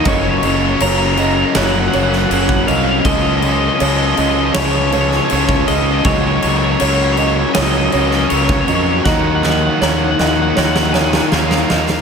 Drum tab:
CC |x-x-x-x-x-x-x-x-|x-x-x-x-x-x-x-x-|x-x-x-x-x-x-x-x-|----------------|
SD |--------o--o----|--------o--o----|--------o--o----|o-o-o-o-oooooooo|
BD |o------------o--|o------------o--|o------------o--|o---------------|